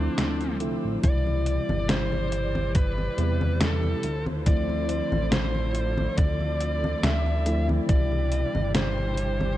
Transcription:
Already playing: tine electric piano D3 F3 A3 C4 E4, lead electric guitar D4, string section C5 D6 E6
0.18 analog synth bass D2, snare, closed hi-hat
0.41 closed hi-hat
0.60 analog synth bass C2, tine electric piano D3 F3 A3 C4 E4, closed hi-hat
0.84 analog synth bass A1
1.02 analog synth bass C2, tine electric piano B2 C3 E3 G3 E4, string section E3 G3 E4 G4 D5, lead electric guitar D5, kick, closed hi-hat, high conga
1.26 high conga
1.46 closed hi-hat
1.69 analog synth bass G1, high conga
1.89 lead electric guitar C5, snare, closed hi-hat, high conga
2.12 high conga
2.32 closed hi-hat
2.55 high conga
2.75 lead electric guitar B4, kick, closed hi-hat, high conga
2.98 high conga
3.17 analog synth bass E2, tine electric piano C3 E3 G3 B3 E4, closed hi-hat
3.41 high conga
3.61 lead electric guitar A4, snare, closed hi-hat, high conga
3.83 high conga
4.03 analog synth bass D2, string section D3 F3 A3 C5, closed hi-hat
4.26 high conga
4.46 tine electric piano D3 F3 A3 C4 E4, lead electric guitar D5, kick, closed hi-hat, high conga
4.69 high conga
4.89 closed hi-hat
5.12 analog synth bass A1, high conga
5.32 lead electric guitar C5, snare, closed hi-hat, high conga
5.55 high conga
5.75 string section D5, closed hi-hat
5.98 high conga
6.18 analog synth bass D2, lead electric guitar D5, kick, closed hi-hat, high conga
6.41 high conga
6.60 closed hi-hat
6.84 high conga
7.03 analog synth bass D2, lead electric guitar E5, snare, closed hi-hat, high conga
7.26 high conga
7.45 tine electric piano D3 F3 A3 C4 E4, closed hi-hat
7.69 high conga
7.88 analog synth bass C2, tine electric piano B2 C3 E3 G3 E4, string section E3 G3 D4 G4, lead electric guitar D5, kick, closed hi-hat, high conga
8.12 high conga
8.32 closed hi-hat
8.55 analog synth bass G1, high conga
8.75 lead electric guitar C5, snare, closed hi-hat, high conga
8.98 high conga
9.17 closed hi-hat
9.40 high conga

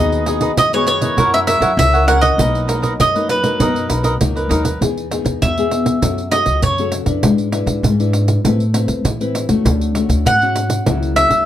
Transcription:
Already playing: upright bass D#2, nylon-string guitar D#3 B3 F#4 G#4, cavaquinho D#4 G#4 B4, mandolin D#5
0.00 cavaquinho D#5
0.12 pandeiro
0.26 nylon-string guitar B3 F#4 G#4, cavaquinho D#4 G#4 B4 D#5, pandeiro
0.41 cavaquinho D#4 G#4 B4 D#5, pandeiro
0.57 upright bass F#2, nylon-string guitar D#3, mandolin D#5, pandeiro
0.73 nylon-string guitar B3 F#4 G#4, cavaquinho G#4 B4 D#5, mandolin C#5, pandeiro
0.87 mandolin C#5, pandeiro
1.01 nylon-string guitar C#4 E4 A#4, cavaquinho G#4 B4 D#5, pandeiro
1.17 upright bass F#2, nylon-string guitar F#3, cavaquinho E4 A#4 C#5 F#5, pandeiro
1.34 nylon-string guitar C#4 E4 A#4, mandolin E5, pandeiro
1.47 cavaquinho E4 A#4 C#5 F#5, mandolin E5, pandeiro
1.61 upright bass F#2, cavaquinho E4 A#4 C#5 F#5, pandeiro
1.77 upright bass C#2, nylon-string guitar C#3 C#4 E4 A#4, mandolin E5, pandeiro
1.93 cavaquinho A#4 C#5 F#5, pandeiro
2.07 nylon-string guitar C#4 E4 A#4, cavaquinho E4 A#4 C#5 F#5, mandolin F#5, pandeiro
2.21 cavaquinho A#4 C#5 F#5, mandolin D#5, pandeiro
2.38 upright bass B1, nylon-string guitar B2 F#3 A#3 D#4, cavaquinho D#4 A#4 B4 D#5, pandeiro
2.55 pandeiro
2.67 nylon-string guitar F#3 A#3 D#4, cavaquinho D#4 A#4 B4 D#5, pandeiro
2.82 cavaquinho D#4 A#4 B4 D#5, pandeiro
2.99 nylon-string guitar F#2, upright bass F#2, mandolin D#5, pandeiro
3.14 nylon-string guitar F#3 A#3 D#4, cavaquinho A#4 B4 D#5, pandeiro
3.29 mandolin B4, pandeiro
3.43 nylon-string guitar F#3 A#3 D#4, cavaquinho A#4 B4 D#5, pandeiro
3.60 upright bass F#2, nylon-string guitar B2, cavaquinho D#4 A#4 B4 D#5, pandeiro
3.75 nylon-string guitar F#3 D#4, pandeiro
3.89 upright bass B1, cavaquinho D#4 A#4 B4 D#5, pandeiro
4.03 cavaquinho D#4 A#4 B4 D#5, pandeiro
4.21 upright bass C#2, nylon-string guitar F#2 F#3 A#3 D#4, pandeiro
4.36 cavaquinho A#4 B4 D#5, pandeiro
4.49 upright bass D#2, nylon-string guitar F#3 A#3 D#4, cavaquinho D#4 A#4 B4 D#5, pandeiro
4.63 cavaquinho A#4 B4 D#5, pandeiro
4.81 upright bass E2, nylon-string guitar E3 B3 D#4 G#4, pandeiro
4.97 pandeiro
5.11 nylon-string guitar B3 D#4 G#4, pandeiro
5.25 upright bass E2, pandeiro
5.42 upright bass E2, nylon-string guitar B2, mandolin E5, pandeiro
5.58 nylon-string guitar B3 G#4, pandeiro
5.71 pandeiro
5.86 pandeiro
6.02 upright bass F#2, nylon-string guitar F#3 C#4 F#4 A4, pandeiro
6.18 pandeiro
6.31 nylon-string guitar C#4 F#4 A4, mandolin D#5, pandeiro
6.46 upright bass C#2, pandeiro
6.62 upright bass F#2, nylon-string guitar C#3, mandolin C#5, pandeiro
6.78 nylon-string guitar C#4 F#4 A4, pandeiro
6.92 pandeiro
7.06 upright bass F#2, nylon-string guitar D4 E4 B4, pandeiro
7.23 upright bass G#2, nylon-string guitar G#3, pandeiro
7.38 pandeiro
7.52 nylon-string guitar D4 E4 B4, pandeiro
7.66 upright bass G#2, pandeiro
7.83 upright bass G#2, nylon-string guitar G#3, pandeiro
7.99 nylon-string guitar D4 E4 B4, pandeiro
8.13 pandeiro
8.28 pandeiro
8.44 upright bass A2, nylon-string guitar A3 C4 E4 B4, pandeiro
8.60 pandeiro
8.74 nylon-string guitar C4 E4 B4, pandeiro
8.88 upright bass E2, pandeiro
9.04 upright bass A2, nylon-string guitar E3, pandeiro
9.20 nylon-string guitar C4 E4 B4, pandeiro
9.35 pandeiro
9.49 upright bass E2, nylon-string guitar A3 C#4 F#4, pandeiro
9.65 upright bass D2, nylon-string guitar D3, pandeiro
9.81 pandeiro
9.95 nylon-string guitar A3 C#4 F#4, pandeiro
10.09 upright bass D2, pandeiro
10.25 upright bass G#2, mandolin F#5, pandeiro
10.42 nylon-string guitar C#4 F#4, pandeiro
10.56 pandeiro
10.70 pandeiro
10.86 upright bass C#2, nylon-string guitar C#3 F#3 A#3 E4, pandeiro
11.03 pandeiro
11.16 nylon-string guitar F#3 A#3 E4, mandolin E5, pandeiro
11.30 upright bass C#2, pandeiro

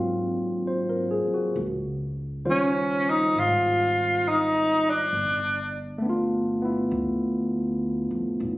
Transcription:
Already playing: upright bass G#1, tine electric piano F#3 A#3 C4 F4
0.67 tine electric piano C5
0.90 tine electric piano A#4
1.11 tine electric piano G#4
1.27 muted upright bass stroke
1.34 tine electric piano F#4
1.56 upright bass C#2
2.45 tine electric piano D#3 G3 F4 C5
2.50 tenor saxophone C#4
3.10 tenor saxophone D#4
3.35 upright bass G#1, tenor saxophone F4
4.28 tenor saxophone D#4
4.90 tenor saxophone D4
5.13 upright bass G1
5.98 tine electric piano A3
6.02 tine electric piano B3 D4
6.09 tine electric piano F4
6.62 tine electric piano B3 E4
6.91 upright bass D2
8.11 upright bass F2
8.40 upright bass B1

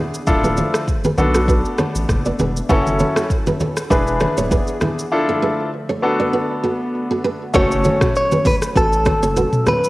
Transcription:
Already playing: analog synth pad E3 B3 D4 G#4, grand piano B3 D4 E4 G#4
0.14 shaker
0.27 sub bass D1, analog synth pad D3 F3 A3 E5, grand piano D4 E4 F4 A4, kick, low conga, shaker
0.43 nylon-string guitar G#4 B4, high conga, shaker
0.57 nylon-string guitar A4 C#5, high conga, shaker
0.74 cross-stick, shaker
0.88 kick, shaker
1.04 nylon-string guitar G#4 B4, high conga, shaker
1.18 sub bass B1, grand piano B3 D4 F#4 A4, analog synth pad B3 D4, high conga, low conga, shaker
1.35 nylon-string guitar F#4 A4, cross-stick, shaker
1.48 nylon-string guitar F#4 B4, kick, shaker
1.65 shaker
1.78 nylon-string guitar A4 C#5, cross-stick, high conga, shaker
1.95 sub bass A1, shaker
2.09 sub bass F#1, kick, cross-stick, low conga, shaker
2.25 nylon-string guitar B4 D5, shaker
2.39 sub bass E1, nylon-string guitar G#4 B4, high conga, low conga, shaker
2.57 shaker
2.69 sub bass F#1, analog synth pad F#3 C#4 E4 A4, grand piano C#4 E4 F#4 A4, nylon-string guitar F#4 B4, kick, low conga, shaker
2.86 high conga, shaker
2.99 nylon-string guitar A4 C#5, high conga, shaker
3.16 nylon-string guitar F#4 A4, cross-stick, shaker
3.30 kick, shaker
3.47 nylon-string guitar G#4 B4, high conga, shaker
3.60 nylon-string guitar A4 C#5, high conga, low conga, shaker
3.77 cross-stick, shaker
3.90 sub bass E1, analog synth pad E3 B3 D4 G#4, grand piano D4 E4 G#4 B4, nylon-string guitar G#4 B4, kick, shaker
4.08 shaker
4.20 nylon-string guitar A4 C#5, cross-stick, high conga, shaker
4.37 sub bass D1, nylon-string guitar A4 C#5, shaker
4.51 nylon-string guitar G#4 B4, kick, low conga, shaker
4.68 shaker
4.81 nylon-string guitar E4 G#4, cross-stick, high conga, low conga, shaker
4.99 shaker
5.12 analog synth pad D3 F3 A3 E5, grand piano D4 E4 F4 A4
5.29 nylon-string guitar F4 A4
5.42 nylon-string guitar G#4 B4
5.89 nylon-string guitar A4 C#5
6.02 grand piano B3 D4 F#4 A4, analog synth pad B3
6.20 nylon-string guitar B4 D5
6.33 nylon-string guitar F#4 B4
6.64 nylon-string guitar F#4 A4
7.11 nylon-string guitar F#4 A4
7.24 nylon-string guitar G#4 B4
7.54 sub bass F#1, analog synth pad F#3 A3 C#4, grand piano A3 C#4 F#4 A4, nylon-string guitar F#4 B4, clean electric guitar C#5, kick, impact, low conga, shaker
7.71 shaker
7.84 nylon-string guitar A4 C#5, high conga, shaker
8.01 nylon-string guitar F#4 A4, kick, cross-stick, mid tom, shaker
8.15 clean electric guitar C#5, shaker
8.32 nylon-string guitar G#4 B4, high conga, shaker
8.45 nylon-string guitar A4 C#5, clean electric guitar B4, kick, open hi-hat, high conga, low conga, shaker
8.62 cross-stick, shaker
8.75 sub bass A1, nylon-string guitar F#4 B4, clean electric guitar A4, kick, shaker
8.93 shaker
9.06 nylon-string guitar A4 C#5, kick, cross-stick, high conga, shaker
9.22 sub bass F#1, nylon-string guitar A4 C#5, shaker
9.36 nylon-string guitar F#4 B4, low conga, shaker
9.53 mid tom, shaker
9.66 nylon-string guitar F#4 A4, clean electric guitar B4, cross-stick, high conga, low conga, shaker
9.84 shaker

